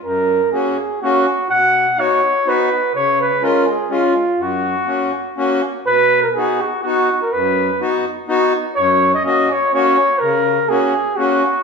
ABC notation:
X:1
M:3/4
L:1/16
Q:"Swing" 1/4=124
K:F#
V:1 name="Flugelhorn"
A4 G4 F4 | f4 c4 B4 | c2 B2 A2 G2 E4 | F8- F2 z2 |
[K:B] B3 A G2 F2 F3 A | B4 z8 | c3 d d2 c2 c4 | A4 G4 F4 |]
V:2 name="Accordion"
F,,4 [A,CF]2 z2 [A,CF]2 z2 | B,,4 [B,DF]2 z2 [B,DF]2 z2 | C,4 [G,CE]2 z2 [G,CE]2 z2 | F,,4 [A,CF]2 z2 [A,CF]2 z2 |
[K:B] B,,4 [B,DF]2 z2 [B,DF]2 z2 | F,,4 [B,DF]2 z2 [B,DF]2 z2 | F,,4 [A,CF]2 z2 [A,CF]2 z2 | C,4 [A,CF]2 z2 [A,CF]2 z2 |]